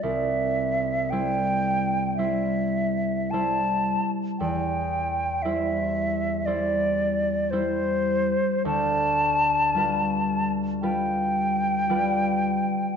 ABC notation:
X:1
M:4/4
L:1/16
Q:1/4=56
K:C
V:1 name="Flute"
e4 g4 e4 a3 z | g4 e4 d4 c4 | a6- a z g8 |]
V:2 name="Harp"
[C,,G,]4 [G,Ec]4 [G,Ec]4 [G,Ec]4 | E,,4 [G,Ec]4 [G,Ec]4 [G,Ec]4 | D,,4 [G,FB]4 [G,FB]4 [G,FB]4 |]